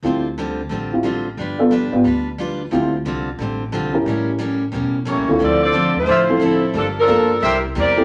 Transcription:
X:1
M:4/4
L:1/8
Q:"Swing" 1/4=179
K:Am
V:1 name="Trumpet section"
z8 | z8 | z8 | z8 |
[K:Dm] z4 [Fcde] z3 | z4 [GBce] z3 |]
V:2 name="Saxophone section"
z8 | z8 | z8 | z6 [_B,EG^c]2 |
[K:Dm] [CFAd] [CFAd]2 [A,EFc]3 [F,CEA]2 | [F,B,DA] [F,DAB]4 z [CGBd]2 |]
V:3 name="Upright piano"
[CEFG] z4 [CEFG] z2 | z [B,DFA] z [B,DFG] z4 | [CEFG] z6 [^CEG_B]- | [^CEG_B]2 z4 z [D,=CEFA]- |
[K:Dm] [D,CEFA]2 z3 [F,CEA]3 | z2 [B,DFA] z4 [A,CEG] |]
V:4 name="Steel-string acoustic guitar"
[D,G,CF] z [D,G,CF] z [D,G,CF] z [D,G,CF] z | [G,DFB] z [G,DFB] z [G,DFB] z [G,DFB] z | [D,G,CF] z [D,G,CF] z [D,G,CF] z [D,G,CF] z | [A,,G,_B,^C] z [A,,G,B,C] z [A,,G,B,C] z [A,,G,B,C] z |
[K:Dm] [D,F,CE] z [D,F,CE] z [D,F,CE] z [D,F,CE] z | [G,B,FA] z [G,B,FA] z [C,G,B,E] z [C,G,B,E] z |]
V:5 name="Upright bass" clef=bass
D,,4 A,,,4 | G,,,3 ^G,,, D,,4 | D,,2 C,,2 A,,,2- (3A,,, C,, G,,, | A,,,4 E,,,2- (3E,,, _B,,, ^C,, |
[K:Dm] D,,3 _E,, A,,,4 | G,,,2 G,,2 C,,2 E,,2 |]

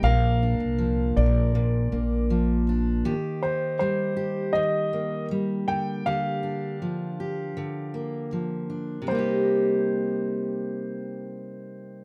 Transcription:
X:1
M:4/4
L:1/16
Q:1/4=80
K:Cm
V:1 name="Upright piano"
f6 d8 z2 | z2 c2 c4 e4 z2 g2 | f12 z4 | c16 |]
V:2 name="Steel-string acoustic guitar"
[B,,B]2 D2 F,2 B2 B,,2 B,2 F,2 D2 | [E,G]2 E2 G,2 G2 E,2 B,2 G,2 D,2 | [D,G]2 D2 F,2 G2 D,2 B,2 F,2 D2 | [C,G,B,EG]16 |]
V:3 name="Upright bass" clef=bass
B,,,3 C,,3 B,,,4 B,,,6 | z16 | z16 | z16 |]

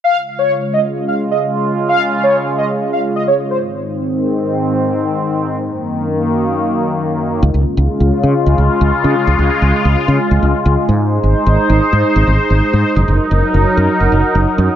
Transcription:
X:1
M:4/4
L:1/16
Q:1/4=130
K:Db
V:1 name="Analog polysynth"
f2 z d2 z e z2 f z e z4 | f2 z d2 z e z2 f z e d z c z | z16 | z16 |
z16 | z16 | z16 | z16 |]
V:2 name="Analog synth pad" clef=bass
[D,A,F]16- | [D,A,F]12- [D,A,F]2 [A,,E,C]2- | [A,,E,C]16 | [G,,E,B,]16 |
[D,A,F]16- | [D,A,F]12- [D,A,F]2 [Ec]2- | [Ec]16 | [G,EB]16 |]
V:3 name="Fretless electric bass" clef=bass
z16 | z16 | z16 | z16 |
D,, D,, z D,, z D,, z D, z D,, D,, z D,, z D, z | D,, D,, z D,, z D,, z D, z D,, D,, z D,, z A,,2- | A,, A,,, z A,,, z A,,, z A,, z A,,, A,,, z A,,, z A,, z | G,,, G,,, z G,,, z G,,, z G,, z G,,, G,,, z G,,, z G,, z |]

